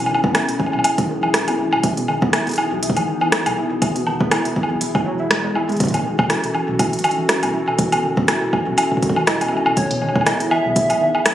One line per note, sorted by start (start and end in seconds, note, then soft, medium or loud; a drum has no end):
0.00 0.41 E1 loud
0.00 1.80 F#3 medium
0.00 1.80 C#4 medium
0.00 1.80 E4 medium
0.00 5.76 G#4 medium
0.06 0.17 D#3 medium
0.06 high woodblock soft
0.15 high woodblock medium
0.24 0.29 B3 loud
0.24 kick loud
0.35 0.46 E4 loud
0.35 cross-stick loud
0.35 closed hi-hat medium
0.35 high woodblock soft
0.49 0.54 B2 medium
0.49 closed hi-hat soft
0.59 0.66 E3 medium
0.59 kick medium
0.59 high woodblock soft
0.66 high woodblock soft
0.73 0.80 B1 medium
0.73 0.82 B2 medium
0.73 high woodblock soft
0.79 high woodblock soft
0.84 0.97 E4 medium
0.84 closed hi-hat medium
0.84 high woodblock medium
0.98 1.05 E1 medium
0.98 1.09 E3 medium
0.98 kick loud
0.98 closed hi-hat medium
1.09 1.52 E1 medium
1.09 1.16 D#3 medium
1.23 1.33 E3 medium
1.23 high woodblock medium
1.34 1.46 E4 loud
1.34 cross-stick loud
1.34 closed hi-hat medium
1.48 1.53 B2 medium
1.48 closed hi-hat medium
1.48 high woodblock soft
1.59 1.74 G#1 medium
1.59 1.66 E4 medium
1.73 1.80 E1 medium
1.73 1.82 B2 medium
1.73 high woodblock medium
1.83 2.39 E1 medium
1.83 9.73 E3 medium
1.83 1.95 E3 medium
1.83 5.76 B3 medium
1.83 3.80 D#4 medium
1.83 kick loud
1.83 closed hi-hat medium
1.97 2.07 B2 loud
1.97 closed hi-hat medium
2.08 2.15 D#3 medium
2.08 high woodblock soft
2.22 2.28 B3 loud
2.22 kick loud
2.33 2.45 E4 loud
2.33 cross-stick loud
2.33 closed hi-hat medium
2.33 high woodblock soft
2.47 2.52 B2 medium
2.47 closed hi-hat soft
2.49 closed hi-hat soft
2.51 closed hi-hat soft
2.54 closed hi-hat soft
2.56 2.65 E3 medium
2.56 closed hi-hat soft
2.56 high woodblock medium
2.72 2.98 B1 medium
2.72 2.81 B2 medium
2.83 2.96 E4 medium
2.83 closed hi-hat medium
2.90 kick medium
2.97 3.04 G#1 medium
2.97 3.07 E3 medium
2.97 closed hi-hat soft
2.97 high woodblock soft
3.07 3.14 D#3 medium
3.21 3.32 E3 medium
3.21 high woodblock medium
3.32 3.44 E4 loud
3.32 cross-stick loud
3.32 closed hi-hat medium
3.46 3.53 B1 medium
3.46 3.52 B2 medium
3.46 closed hi-hat soft
3.46 high woodblock medium
3.57 3.64 E4 medium
3.71 3.80 B2 medium
3.82 4.37 E1 loud
3.82 3.93 E3 medium
3.82 5.78 E4 medium
3.82 kick loud
3.82 closed hi-hat medium
3.82 high woodblock soft
3.96 4.05 B2 loud
3.96 closed hi-hat soft
4.07 4.14 D#3 medium
4.07 high woodblock soft
4.21 4.26 B3 loud
4.21 kick loud
4.31 4.43 E4 loud
4.31 cross-stick loud
4.31 closed hi-hat medium
4.31 high woodblock medium
4.45 4.51 B2 medium
4.45 closed hi-hat medium
4.56 4.63 E3 medium
4.56 kick medium
4.63 high woodblock soft
4.70 4.77 B1 medium
4.70 4.79 B2 medium
4.81 4.94 E4 medium
4.81 closed hi-hat medium
4.95 5.02 E1 medium
4.95 5.05 E3 medium
4.95 kick loud
4.95 high woodblock soft
5.06 5.49 E1 medium
5.06 5.13 F#3 loud
5.20 5.25 E4 medium
5.31 5.42 G#3 loud
5.31 cross-stick loud
5.31 closed hi-hat medium
5.45 5.54 G#3 loud
5.55 5.71 G#1 medium
5.55 5.69 E4 loud
5.55 high woodblock soft
5.69 5.76 E1 medium
5.69 5.78 G#3 loud
5.69 closed hi-hat soft
5.72 closed hi-hat soft
5.77 6.36 E1 loud
5.77 5.92 E3 medium
5.77 kick medium
5.77 closed hi-hat soft
5.80 9.73 C#4 medium
5.80 9.73 F#4 medium
5.80 9.73 A4 medium
5.80 kick medium
5.80 closed hi-hat medium
5.85 kick medium
5.85 closed hi-hat soft
5.88 kick soft
5.88 closed hi-hat soft
5.94 6.03 B2 loud
5.94 kick soft
5.94 closed hi-hat soft
5.94 high woodblock soft
5.97 kick soft
6.00 kick soft
6.02 6.12 D#3 medium
6.02 kick soft
6.19 6.24 B2 loud
6.19 kick loud
6.19 high woodblock medium
6.30 6.41 E4 loud
6.30 cross-stick loud
6.30 closed hi-hat medium
6.44 6.49 B2 medium
6.44 closed hi-hat soft
6.55 6.62 E3 medium
6.55 high woodblock soft
6.68 6.95 B1 medium
6.68 6.78 B2 medium
6.79 6.93 E4 medium
6.79 kick medium
6.79 closed hi-hat medium
6.79 high woodblock soft
6.93 7.00 G#1 medium
6.93 7.04 E3 medium
6.93 closed hi-hat soft
6.99 closed hi-hat soft
7.04 7.11 D#3 medium
7.04 closed hi-hat soft
7.04 high woodblock medium
7.11 closed hi-hat soft
7.18 7.28 E3 medium
7.29 7.41 E4 loud
7.29 cross-stick loud
7.29 closed hi-hat medium
7.43 7.50 B1 medium
7.43 7.48 B2 medium
7.43 closed hi-hat soft
7.43 high woodblock soft
7.54 7.61 E4 medium
7.68 7.77 B2 medium
7.68 high woodblock soft
7.79 8.34 E1 loud
7.79 7.90 E3 medium
7.79 kick loud
7.79 closed hi-hat medium
7.92 8.02 B2 loud
7.92 closed hi-hat soft
7.92 high woodblock medium
8.03 8.10 D#3 medium
8.17 8.23 B2 loud
8.17 kick loud
8.28 8.40 E4 loud
8.28 cross-stick loud
8.28 closed hi-hat medium
8.28 high woodblock soft
8.42 8.47 B2 medium
8.53 8.60 E3 medium
8.53 kick medium
8.53 high woodblock soft
8.67 8.74 B1 medium
8.67 8.76 B2 medium
8.78 8.91 E4 medium
8.78 closed hi-hat medium
8.78 high woodblock medium
8.92 8.99 E1 medium
8.92 9.02 E3 medium
8.92 kick soft
8.97 kick medium
9.02 9.46 E1 medium
9.02 9.09 D#3 medium
9.02 kick medium
9.02 closed hi-hat soft
9.09 kick medium
9.16 9.27 E3 medium
9.16 high woodblock medium
9.27 9.39 E4 loud
9.27 9.73 D#5 loud
9.27 cross-stick loud
9.27 closed hi-hat medium
9.41 9.47 B2 medium
9.41 closed hi-hat soft
9.41 high woodblock soft
9.48 9.67 G#1 medium
9.48 9.59 E4 medium
9.48 high woodblock soft
9.57 high woodblock soft
9.66 9.73 E1 medium
9.66 9.75 B2 medium
9.66 high woodblock medium
9.77 10.32 E1 loud
9.77 9.88 E3 medium
9.77 11.34 E3 medium
9.77 11.34 B3 medium
9.77 11.34 E4 medium
9.77 11.34 G#4 medium
9.77 10.23 C#5 loud
9.77 kick medium
9.77 closed hi-hat medium
9.91 10.00 B2 loud
9.91 closed hi-hat soft
10.02 10.09 D#3 medium
10.02 high woodblock soft
10.09 high woodblock soft
10.15 10.21 B2 loud
10.15 kick loud
10.15 high woodblock soft
10.21 high woodblock soft
10.26 10.38 E4 loud
10.26 10.38 D#5 loud
10.26 cross-stick loud
10.26 closed hi-hat medium
10.26 high woodblock medium
10.40 10.46 B2 medium
10.40 closed hi-hat medium
10.51 10.58 E3 medium
10.51 11.34 E5 loud
10.51 high woodblock medium
10.65 10.91 B1 medium
10.65 10.74 B2 medium
10.76 10.89 E4 medium
10.76 kick medium
10.76 closed hi-hat medium
10.90 10.97 G#1 medium
10.90 11.00 E3 medium
10.90 closed hi-hat soft
10.90 high woodblock medium
11.01 11.08 D#3 medium
11.15 11.25 E3 medium
11.15 high woodblock medium
11.26 11.34 E4 loud
11.26 cross-stick loud
11.26 closed hi-hat medium